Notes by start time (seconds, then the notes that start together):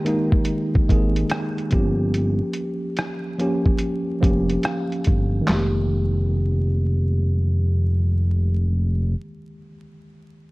Already playing: D#3 G#3 A#3 G4
0.05 D#3 G#3 A#3 D#4, closed hi-hat
0.32 kick
0.45 closed hi-hat
0.75 kick
0.88 G#1 D#3 G#3 A#3 G#4, kick, closed hi-hat
1.16 closed hi-hat
1.30 cross-stick, closed hi-hat
1.58 closed hi-hat
1.70 G1 F3 A#3 C#4 G4, kick, closed hi-hat
2.14 closed hi-hat
2.53 closed hi-hat
2.97 cross-stick, closed hi-hat
3.38 F3 A#3 C#4 G4, closed hi-hat
3.66 kick
3.78 closed hi-hat
4.20 F1 F3 A#3 C#4 G4, kick, closed hi-hat
4.50 closed hi-hat
4.63 F5, cross-stick, closed hi-hat
4.92 closed hi-hat
5.04 G1, kick, closed hi-hat
5.41 D#3 G#3
5.48 F1 A#3, snare, clap
5.54 G4